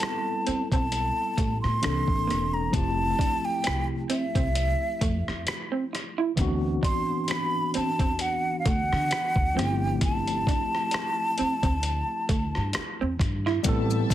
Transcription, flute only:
Already playing: A5
0.72 A5
1.61 C6
2.54 A#5
2.74 A5
3.45 G5
4.10 E5
6.85 C6
7.24 C6
7.30 B5
7.76 A5
8.21 F#5
8.59 F5
8.68 F#5
9.58 G5
10.04 A5

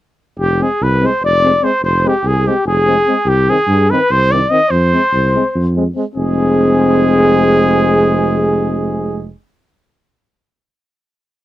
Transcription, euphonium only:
0.60 C4
1.01 C4
1.43 C4
1.62 C4
2.04 C4
2.46 C4
2.87 C4
3.07 C4
3.48 C4
3.92 C4
4.32 C4
4.50 C4
4.93 C4
5.35 C4
5.76 C4
5.95 C4
6.16 C4

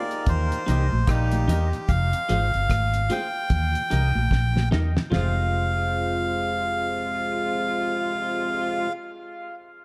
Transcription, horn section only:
Already playing: A#3 D#4 G4 A#4
0.67 G3 A#3 D#4 G4
1.07 D#3 G3 A#3 D#4
5.11 C3 F3 G#3 F4

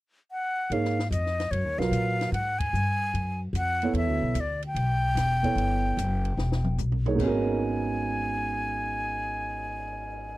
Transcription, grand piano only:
0.71 A#3 D#4 G#4 C#5
1.78 F#3 F4 A#4 B4
3.83 B3 E4 A4 C#5
5.43 B3 E4 A4 C#5
7.06 A#3 D#4 G#4 C#5
7.15 G#2 G#3
7.20 B3 C#4
7.24 F#4 A#4

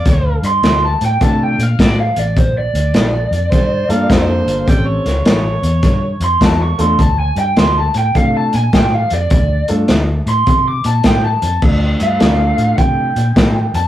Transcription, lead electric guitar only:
0.46 C6
0.84 A5
1.05 G5
1.23 A5
1.43 G5
1.63 F5
1.80 D5
2.00 F5
2.19 D5
2.38 C5
2.58 D5
6.24 C6
6.44 A5
6.63 C#6
6.81 C6
7.00 A5
7.19 G#5
7.39 G5
7.58 C6
7.78 A5
7.98 G5
8.17 F5
8.37 A5
8.55 G#5
8.74 G5
8.94 F5
9.14 D5
10.29 C6
10.68 D6
10.86 A5
11.06 G5
11.24 A5
12.03 F5
12.78 G5
13.75 A5

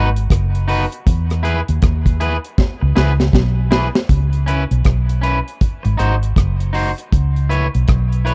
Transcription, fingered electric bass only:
Already playing: G#1
0.31 F#1
1.07 E2
1.69 D#2
1.83 D#2
2.82 C#2
2.97 C#2
3.34 B1
4.10 C#2
4.71 B1
4.86 B1
5.85 G#1
6.00 G#1
6.37 F#1
7.13 C#2
7.75 B1
7.89 B1

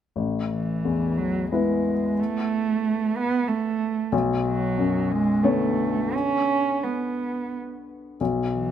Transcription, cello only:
0.51 E3
1.18 F#3
1.51 G#3
2.19 A3
3.17 B3
3.48 A3
4.46 F#3
5.11 G#3
5.44 A3
6.14 C#4
6.83 B3
8.53 E3

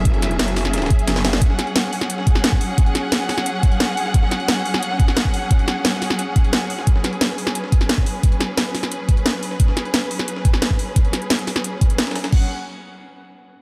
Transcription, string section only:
Already playing: F#3 C#4 G#4 E5
1.42 F#5
6.87 B4
12.33 F#3 C#4 G#4 F#5

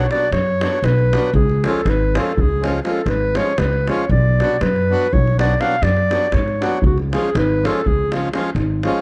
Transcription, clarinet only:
Already playing: C#5
0.11 D5
0.32 C#5
0.85 B4
1.35 G#4
1.66 A4
1.89 B4
2.20 A4
2.40 G#4
2.88 A4
3.09 B4
3.37 C#5
3.59 B4
3.89 C#5
4.11 D5
4.62 B4
5.13 C#5
5.40 D5
5.61 F5
5.83 D5
6.34 C#5
6.86 F#4
7.14 G#4
7.38 B4
7.66 A4
7.87 G#4

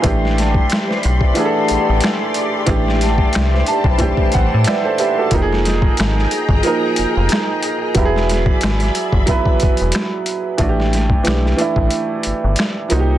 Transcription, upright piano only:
0.02 E3 A3 D4
0.07 G4
1.34 E3 A3 D4
1.39 G#4
1.45 A4
2.66 E3 A3 D4
2.71 G4
3.68 A5
3.98 E3 A3 D4 G5
4.03 G4
4.34 F#5
4.67 B4 D5 E5
4.85 A4 C5
5.00 G4 B4 E5
5.18 F#4 A4
5.31 F3 A#3 D#4
5.36 G4
5.42 G#4
6.62 F3 A#3 D#4
6.67 A#4
7.94 F#3 B3 E4
7.99 G4
8.05 G#4
9.26 F#3 B3 E4
9.31 B4
10.58 E3 A3 D4
10.62 F#4
10.69 G4
11.23 E3 A3 D4
11.29 G4
11.57 E3 A3 D4
11.61 E4
12.88 F3 A#3 D#4
12.93 F#4
13.00 G4

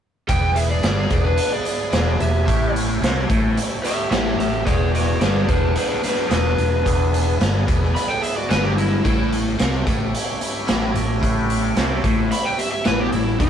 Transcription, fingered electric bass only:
0.29 E1
0.84 G1
1.11 E1
1.93 E1
2.20 E1
2.48 A1
3.02 C2
3.30 A1
4.11 A1
4.37 A1
4.67 E1
5.21 G1
5.49 E1
6.31 E1
6.59 E1
6.86 E1
7.41 G1
7.69 E1
8.51 G1
9.05 A1
9.61 C2
9.88 A1
10.69 A1
10.96 A1
11.23 A1
11.77 C2
12.04 A1
12.87 A1
13.13 A1
13.40 E1

